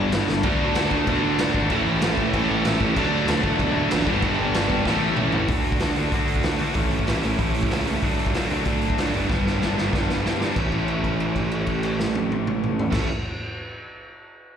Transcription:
Already playing: G1 G2 D3 G3 B3 D4
0.12 G1 G2 D3 G3 B3 D4, snare, crash
0.29 G1 G2 D3 G3 B3 D4, snare
0.43 D2 D3 F#3 A3 D4 F#4, kick, crash
0.75 D2 D3 F#3 A3 D4 F#4, snare, crash
0.91 D2 D3 F#3 A3 D4 F#4, kick
1.07 B2 D3 F#3 A3 D4 F#4, kick, crash
1.23 D2
1.38 D2 D3 F#3 A3 D4 F#4, snare, crash
1.54 G#1 D3 F#3 A3 D4 F#4, kick
1.70 A1 A2 E3 A3 C#4 E4, kick, crash
1.87 A1
2.02 A1 A2 E3 A3 C#4 E4, snare, crash
2.18 A2 E3 A3 C#4 E4, kick
2.33 A1 A2 E3 A3 C#4 E4, kick, crash
2.50 A1
2.65 A1 A2 E3 A3 C#4 E4, snare, crash
2.81 A1 A2 E3 A3 C#4 E4, kick
2.96 D2 D3 F#3 A3 D4, kick, crash
3.28 D2 D3 F#3 A3 D4, snare, crash
3.43 D2 D3 F#3 A3 D4, kick
3.59 B2 D3 F#3 A3 D4, kick, crash
3.75 D2
3.90 A1 D3 F#3 A3 D4, snare, crash
4.06 G1 G2 D3 G3 B3 D4, kick
4.22 G1 G2 D3 G3 B3 D4, kick, crash
4.40 G1
4.54 G1 G2 D3 G3 B3 D4, snare, crash
4.70 G2 D3 G3 B3 D4, kick
4.85 A1 A2 E3 A3 C#4 E4, kick, snare
5.03 A1
5.17 A1 A2 E3 A3 C#4 E4, mid tom
5.32 A1 A2 E3 A3 C#4 E4, floor tom
5.48 D2 D3 A3 D4 F#4, kick, open hi-hat
5.64 open hi-hat
5.72 kick
5.80 D2 D3 A3 D4 F#4, snare, open hi-hat
5.96 D2 D3 A3 D4 F#4, open hi-hat
6.12 D2 D3 A3 D4 F#4, kick, open hi-hat
6.28 open hi-hat
6.36 kick
6.43 D2 D3 A3 D4 F#4, snare, open hi-hat
6.59 D2 D3 A3 D4 F#4, open hi-hat
6.74 A1 A2 E3 A3 C#4 E4, kick, open hi-hat
6.91 A1, open hi-hat
6.99 kick
7.07 A1 A2 E3 A3 C#4 E4, snare, open hi-hat
7.23 A1 A2 E3 A3 C#4 E4, open hi-hat
7.39 A1 A2 E3 A3 C#4 E4, kick, open hi-hat
7.55 A1, open hi-hat
7.63 kick
7.71 C#2 A2 E3 A3 C#4 E4, snare, open hi-hat
7.87 A2 E3 A3 C#4 E4, open hi-hat
8.03 D2 D3 F#3 A3 D4, kick, open hi-hat
8.19 open hi-hat
8.26 kick
8.34 D2 D3 F#3 A3 D4, snare, open hi-hat
8.50 D2 D3 F#3 A3 D4, open hi-hat
8.65 D2 D3 F#3 A3 D4, kick, open hi-hat
8.82 open hi-hat
8.90 kick
8.98 D2 D3 F#3 A3 D4, snare, open hi-hat
9.14 G1 G2 D3 G3 B3 D4, open hi-hat
9.30 G1 G2 D3 G3 B3 D4, kick, snare
9.46 G1, snare
9.61 G1 G2 D3 G3 B3 D4, snare
9.78 G1 G2 D3 G3 B3 D4, snare
9.93 G1 G2 D3 G3 B3 D4, kick, snare
10.10 G1, snare
10.25 G2 D3 G3 B3 D4, snare
10.41 G2 D3 G3 B3 D4, snare
10.56 A1 A2 E3 A3 C#4 E4, kick, crash
10.72 kick, crash
10.88 crash
11.04 kick, crash
11.20 crash
11.35 kick, crash
11.51 crash
11.66 kick, crash
11.83 crash
12.00 snare
12.15 high tom
12.32 high tom
12.47 mid tom
12.64 mid tom
12.79 floor tom
12.92 A1 A2 E3 A3 C#4 E4, kick, snare, crash

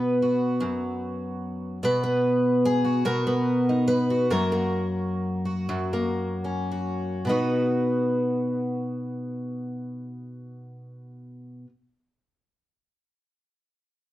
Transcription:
Already playing: B2 B3 B4
0.22 F#4
0.60 F#2
1.83 B2 B4
2.03 B3
2.65 G#4
2.85 F#4
3.05 B2 A#4
3.27 B3
3.69 D#4
3.88 B4
4.10 F#4
4.30 F#2 A#3 F#4 A#4
4.52 A#3
5.45 F#4
5.69 F#2
5.93 A#3
6.44 C#4
6.72 F#4
7.25 B2 B3
7.29 D#4 F#4 B4

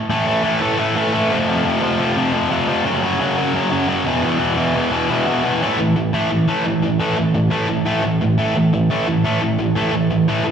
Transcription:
0.10 A2 E3 A3
0.27 A2 E3 A3
0.43 A2 E3 A3
0.61 A2 E3 A3
0.78 A2 E3 A3
0.96 A2 E3 A3
1.13 A2 E3 A3
1.30 F2 C3 F3
1.48 F2 C3 F3
1.65 F2 C3 F3
1.82 F2 C3 F3
1.99 F2 C3 F3
2.17 F2 C3 F3
2.34 F2 C3 F3
2.50 F2 C3 F3
2.68 F2 C3 F3
2.85 F#2 C#3 F#3
3.03 F#2 C#3 F#3
3.20 F#2 C#3 F#3
3.37 F#2 C#3 F#3
3.54 F#2 C#3 F#3
3.71 F#2 C#3 F#3
3.88 F#2 C#3 F#3
4.06 E2 B2 E3
4.23 E2 B2 E3
4.39 E2 B2 E3
4.57 E2 B2 E3
4.75 E2 B2 E3
4.91 E2 B2 E3
5.09 E2 B2 E3
5.26 E2 B2 E3
5.43 E2 B2 E3
5.61 A2 E3 A3
5.78 A2 E3
5.96 A2 E3
6.13 A2 E3 A3
6.31 A2 E3
6.48 A2 E3 A3
6.65 A2 E3
6.82 A2 E3
6.99 A2 E3 A3
7.17 A2 E3
7.34 A2 E3
7.50 A2 E3 A3
7.68 A2 E3
7.86 A2 E3 A3
8.03 A2 E3
8.21 A2 E3
8.38 A2 E3 A3
8.55 A2 E3
8.73 A2 E3
8.90 A2 E3 A3
9.07 A2 E3
9.25 A2 E3 A3
9.41 A2 E3
9.59 A2 E3
9.76 A2 E3 A3
9.92 A2 E3
10.11 A2 E3
10.28 A2 E3 A3
10.45 A2 E3

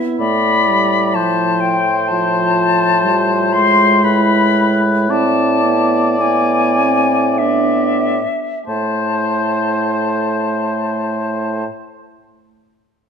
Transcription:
Already playing: B3 E4
0.18 A2 A3 D5 B5
0.69 G3
1.14 F3 C5 A5
1.60 G5
2.08 F3 F4 A5
3.04 G3 F4
3.53 G#3 C6
4.04 A2 E4 B4 B5
5.09 C4 E4 D5 A5
5.63 B3
6.20 B3 E4 G#5
6.78 C4
7.38 B3 D4 D5 E5
8.66 A2 A3 E4 C5 A5

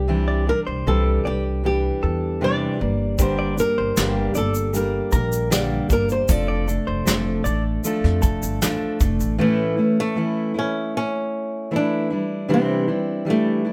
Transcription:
Already playing: C2 G4
0.08 C3 E3 G3 D4 G4
0.28 D5
0.47 G3 D4 G4 A#4
0.67 C2 C5
0.87 C2 C3 E3 G3 D4 G4 A4
1.25 C2 G3 D4 G4 D5
1.64 E3 G3 D4 G4
2.03 E2 A4
2.41 C3 E3 G3 D4 G4 D5
2.79 G1 G3 A#3 D4 G4
3.18 G2 D3 G3 A#3 D4 G4 C5, kick, shaker
3.39 D5
3.57 G3 A#3 D4 G4 A#4, shaker
3.78 G1 C5
3.96 G1 G2 D3 G3 A#3 D4 G4, snare, shaker
4.34 G1 G3 A#3 D4 G4 A4 D5, shaker
4.54 shaker
4.73 G3 A#3 D4 G4 A#4, shaker
5.12 A#1 A#4, kick, shaker
5.33 shaker
5.50 G2 D3 G3 A#3 D4 G4 D5, snare, shaker
5.89 G1 G3 A#3 D4 G4 A#4, kick, shaker
6.09 C5, shaker
6.28 F1 F3 A3 D4 A4 D5, kick, shaker
6.48 D5
6.68 A3 D4 A4, shaker
6.87 F1 C5
7.05 F1 F3 A3 D4 A4, snare, shaker
7.44 A1 A3 D4 A4 D5, shaker
7.84 F3 A3 D4 A4, shaker
8.04 F2, snare
8.22 F1 A4, kick, shaker
8.43 G1, shaker
8.62 A1 F3 A3 D4 A4, snare, shaker
9.00 F1 A3 D4 A4, kick, shaker
9.20 A1, shaker
9.38 A2 E3 A3 C#4 E4
9.77 A3 C#4 E4
10.00 A3
10.16 E3 A3 C#4 E4
10.54 A3 C#4 E4
10.59 C#4
10.97 C#4
11.71 E3 A3 E4
11.76 D4
12.10 G3 D4 E4
12.48 C3 E3 G3 D4 E4
12.54 C4
12.87 G3 D4 E4
13.25 E3 G3 D4 E4
13.30 A3
13.65 G3 D4 E4

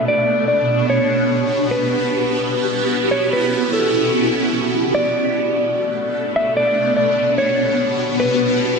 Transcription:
Already playing: B2 B3 D4
0.08 F#4 G4 D5
0.48 D5
0.90 C#5
1.70 B3 C#4 E4 B4
3.11 C#5
3.33 B4
3.73 A4
4.94 B3 D4 D5
6.36 E5
6.56 B2 F#4 G4 D5
6.97 D5
7.38 C#5
8.20 B4

